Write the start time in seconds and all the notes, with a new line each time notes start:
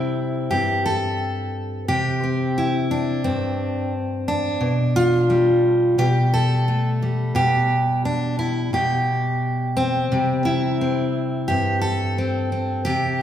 Already playing: C3 G3 C4 E4
0.51 G2 G4
0.86 A4
1.88 C3 G4
2.24 C4
2.58 E4
2.91 D4
3.24 G2 C4
4.28 D4
4.61 B2
4.96 F4
5.30 G3
5.98 B2 G4
6.34 A4
6.68 A3
7.02 G3
7.35 B2 G4
8.05 D4
8.39 E4
8.73 B2 G4
9.77 C4
10.12 C3 G3
10.45 E4
10.81 C4
11.48 G2 G4
11.81 A4
12.18 C4
12.52 C4
12.85 C3 G4